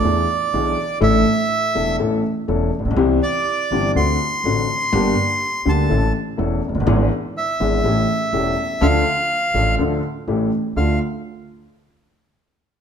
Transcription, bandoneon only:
0.00 0.99 D5 medium
1.03 1.96 E5 loud
3.23 3.92 D5 loud
3.96 5.71 C6 loud
5.69 6.13 A5 medium
7.37 8.87 E5 medium
8.82 9.75 F5 loud
10.77 10.99 F5 medium

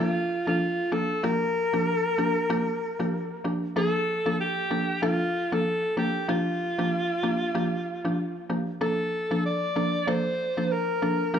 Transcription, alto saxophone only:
0.00 0.44 F4 medium
0.48 0.94 F4 medium
0.93 1.26 A4 loud
1.24 3.45 A#4 loud
3.77 4.36 A4 loud
4.41 4.99 G4 loud
5.04 5.55 F4 loud
5.53 5.98 A4 loud
5.98 6.27 G4 medium
6.30 8.46 F4 loud
8.82 9.41 A4 loud
9.46 10.10 D5 loud
10.09 10.73 C5 loud
10.72 11.34 A#4 loud
11.35 11.39 A#4 loud

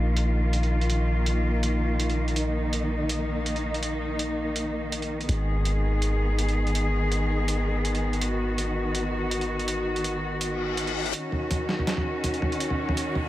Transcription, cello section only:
0.00 5.25 D#3 medium
0.00 5.25 A#3 medium
0.00 2.33 F4 medium
2.36 5.26 D#4 medium
5.29 11.10 D#3 medium
5.29 11.10 B3 medium
5.29 8.19 G#4 medium
8.21 11.11 F#4 medium
11.14 13.29 D#3 medium
11.14 13.29 C#4 medium
11.14 13.29 F#4 medium

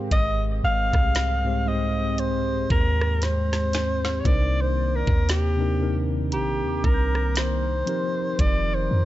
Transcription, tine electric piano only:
0.00 1.05 G#2 medium
0.00 1.06 G#3 medium
0.00 1.06 C4 medium
0.00 1.07 G4 medium
0.00 1.07 A#4 medium
1.43 1.59 G#2 medium
1.43 1.59 G#3 medium
1.43 1.60 C4 medium
1.43 1.60 G4 medium
1.43 1.61 C5 medium
1.65 3.10 G#2 medium
1.65 3.10 G#3 medium
1.65 3.11 C4 medium
1.65 3.11 G4 medium
1.65 3.12 C5 medium
4.24 5.15 C3 medium
4.24 5.16 C4 medium
4.24 5.16 D4 medium
4.24 5.17 D#4 medium
4.24 5.17 A#4 medium
5.57 5.73 C3 medium
5.57 5.73 C4 medium
5.57 5.74 D4 medium
5.57 5.74 D#4 medium
5.57 5.75 A#4 medium
5.79 7.24 C3 medium
5.79 7.24 C4 medium
5.79 7.25 D4 medium
5.79 7.25 D#4 medium
5.79 7.25 A#4 medium
7.86 9.05 F3 medium
7.86 9.05 C4 medium
7.86 9.05 D#4 medium
7.86 9.05 G4 medium
7.86 9.05 A#4 medium

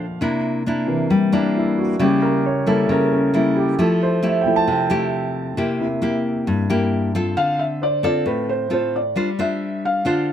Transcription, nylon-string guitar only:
0.00 0.18 F3 medium
0.21 1.08 C3 medium
0.21 0.62 A#3 soft
0.21 0.62 D4 medium
0.21 0.62 E4 medium
0.66 1.10 A#3 medium
0.66 1.11 D4 medium
0.66 1.11 E4 medium
1.10 1.97 G3 medium
1.32 1.96 A#3 medium
1.32 1.96 D4 medium
1.32 1.96 E4 medium
1.99 2.87 C#3 medium
1.99 2.44 G3 medium
1.99 2.44 A#3 medium
1.99 2.44 E4 medium
2.67 3.30 G3 medium
2.67 3.30 A#3 medium
2.67 3.30 E4 medium
2.89 3.76 C#3 medium
3.34 3.75 G3 medium
3.34 3.75 A#3 medium
3.34 3.75 E4 medium
3.79 4.66 F3 medium
3.79 4.20 A3 medium
3.79 4.20 E4 medium
3.79 4.20 G4 medium
4.23 4.67 A3 medium
4.23 4.68 E4 medium
4.23 4.68 G4 medium
4.68 5.55 C3 medium
4.90 5.54 A3 medium
4.90 5.54 E4 medium
4.90 5.54 G4 medium
5.57 6.45 C3 medium
5.57 5.86 A#3 medium
5.57 5.86 E4 medium
5.57 5.87 G4 medium
6.02 6.65 A#3 medium
6.02 6.66 E4 medium
6.02 6.66 G4 medium
6.47 7.34 G2 medium
6.70 7.11 A#3 medium
6.70 7.11 E4 medium
6.70 7.11 G4 medium
7.15 7.78 C4 medium
7.15 7.78 F4 medium
7.15 7.78 A4 medium
7.37 8.24 D3 medium
8.03 8.67 C4 medium
8.03 8.67 F4 medium
8.03 8.67 A4 medium
8.26 9.13 A2 medium
8.70 9.01 C4 medium
8.70 9.01 F4 medium
8.70 9.01 A4 medium
9.16 10.03 G3 medium
9.16 9.29 D4 medium
9.16 9.29 F4 soft
9.16 9.29 C5 medium
9.39 10.02 D4 medium
9.39 10.02 F4 medium
9.39 10.02 C5 medium
10.05 10.33 D3 medium
10.05 10.33 D4 medium
10.05 10.33 F4 medium
10.05 10.33 C5 medium

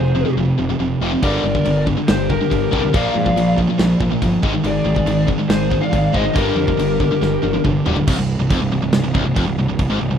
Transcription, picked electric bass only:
0.00 0.23 F1 loud
0.37 0.51 F1 medium
0.60 0.73 F1 medium
0.80 0.94 F1 medium
1.01 1.15 F1 medium
1.23 1.37 G1 loud
1.44 1.58 G1 medium
1.66 1.94 G1 loud
2.09 2.37 G1 medium
2.52 2.66 G1 medium
2.73 2.87 C2 medium
2.94 3.08 A#1 loud
3.16 3.30 G#2 loud
3.37 3.65 A#1 medium
3.79 3.94 A#1 medium
4.00 4.15 A#1 medium
4.22 4.36 G1 medium
4.43 4.58 G#1 medium
4.64 4.79 G#1 loud
4.85 5.00 G#1 medium
5.06 5.35 G#1 loud
5.49 5.78 G#1 loud
5.93 6.07 G#1 medium
6.14 6.29 G#1 medium
6.36 6.50 G1 loud
6.56 6.71 F2 medium
6.79 7.07 G1 loud
7.22 7.36 G1 loud
7.43 7.57 G1 medium
7.65 7.79 G1 medium
7.86 8.01 D1 loud
8.07 8.17 C1 loud
8.18 8.38 C1 medium
8.39 8.49 C1 medium
8.51 8.61 F1 medium
8.61 8.71 C1 medium
8.73 8.83 C1 medium
8.83 8.93 C1 medium
8.95 9.04 C1 medium
9.06 9.14 C1 medium
9.15 9.25 C1 medium
9.27 9.36 C1 medium
9.36 9.46 F1 medium
9.48 9.57 C1 medium
9.58 9.68 C1 medium
9.69 9.78 C1 medium
9.79 9.89 C1 medium
9.91 10.00 G#1 medium
10.01 10.11 C1 medium
10.12 10.18 C1 medium

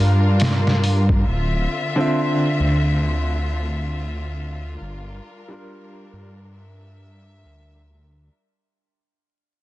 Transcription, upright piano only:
0.00 1.24 G3 medium
0.00 1.25 D4 medium
0.00 1.26 F4 medium
0.00 1.26 A#4 loud
1.96 4.77 D3 medium
1.96 4.78 C4 medium
1.96 4.79 F4 medium
2.00 4.80 E5 loud
5.48 8.30 G3 medium
5.48 8.31 D4 medium
5.48 8.31 F4 medium
5.53 8.32 A#4 medium

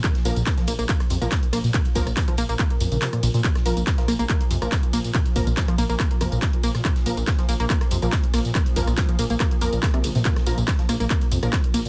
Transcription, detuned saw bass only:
0.25 0.32 A#1 medium
0.36 0.43 A#1 medium
0.68 0.75 A#1 medium
0.79 0.85 A#1 medium
1.10 1.17 F2 loud
1.22 1.28 A#1 medium
1.53 1.60 A#1 loud
1.64 1.70 A#2 medium
1.95 2.02 A#1 loud
2.07 2.13 A#1 medium
2.38 2.45 A#1 loud
2.49 2.55 A#1 medium
2.80 2.87 F2 loud
2.92 2.98 A#1 medium
3.23 3.30 A#1 medium
3.34 3.40 A#2 medium
3.66 3.73 A#1 loud
3.77 3.83 A#1 medium
4.08 4.15 A#1 medium
4.19 4.26 A#1 medium
4.51 4.58 F2 loud
4.62 4.68 A#1 medium
4.93 5.00 A#1 loud
5.04 5.11 A#2 medium
5.36 5.43 A#1 medium
5.47 5.53 A#1 medium
5.78 5.85 A#1 medium
5.90 5.96 A#1 medium
6.21 6.28 F2 loud
6.32 6.38 A#1 medium
6.64 6.70 A#1 medium
6.75 6.81 A#2 medium
7.06 7.13 A#1 medium
7.17 7.24 A#1 medium
7.49 7.56 A#1 loud
7.60 7.66 A#1 medium
7.91 7.98 F2 loud
8.02 8.09 A#1 medium
8.34 8.41 A#1 loud
8.45 8.51 A#2 medium
8.76 8.83 A#1 loud
8.87 8.94 A#1 medium
9.19 9.26 A#1 medium
9.30 9.36 A#1 medium
9.61 9.68 F2 medium
9.73 9.79 A#1 medium
10.04 10.11 A#1 medium
10.15 10.21 A#2 medium
10.47 10.53 A#1 medium
10.58 10.64 A#1 medium
10.89 10.96 A#1 medium
11.00 11.07 A#1 medium
11.32 11.39 F2 medium
11.43 11.49 A#1 medium
11.74 11.81 A#1 medium
11.85 11.89 A#2 medium

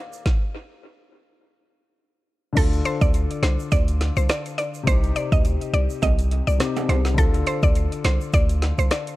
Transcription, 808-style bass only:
2.57 2.81 D2 loud
3.01 3.26 D2 medium
3.43 3.57 C2 loud
3.72 4.11 D2 loud
4.17 4.28 C2 medium
4.87 5.12 C2 loud
5.32 5.57 D2 medium
5.73 5.88 C2 medium
6.03 6.42 C2 loud
6.47 6.58 C2 medium
6.89 7.19 C2 medium
7.18 7.43 D2 loud
7.63 7.88 D2 medium
8.05 8.19 C2 medium
8.34 8.72 D2 loud
8.78 8.89 C2 medium

